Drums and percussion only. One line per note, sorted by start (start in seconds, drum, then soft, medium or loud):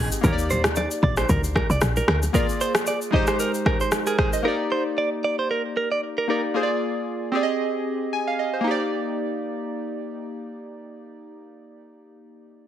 0.12 shaker loud
0.24 kick loud
0.24 low conga medium
0.24 shaker medium
0.38 shaker medium
0.50 low conga medium
0.50 shaker medium
0.64 cross-stick loud
0.64 low bongo medium
0.64 shaker medium
0.76 high bongo medium
0.76 shaker medium
0.91 shaker medium
1.03 kick loud
1.17 cross-stick medium
1.17 high bongo medium
1.17 shaker medium
1.29 kick loud
1.29 low conga medium
1.29 shaker medium
1.44 shaker medium
1.56 kick medium
1.56 cross-stick medium
1.56 low bongo medium
1.70 shaker soft
1.81 cross-stick medium
1.81 high bongo medium
1.81 shaker medium
1.96 low bongo medium
1.96 shaker medium
2.08 cross-stick loud
2.23 high bongo soft
2.23 shaker medium
2.34 kick loud
2.34 shaker medium
2.49 shaker soft
2.61 shaker medium
2.75 cross-stick loud
2.75 shaker medium
2.86 shaker medium
3.01 shaker medium
3.13 kick loud
3.27 cross-stick medium
3.27 shaker medium
3.40 shaker medium
3.54 shaker medium
3.66 kick medium
3.66 cross-stick medium
3.80 shaker soft
3.92 cross-stick medium
3.92 shaker medium
4.07 shaker medium
4.19 kick medium
4.19 cross-stick medium
4.33 shaker medium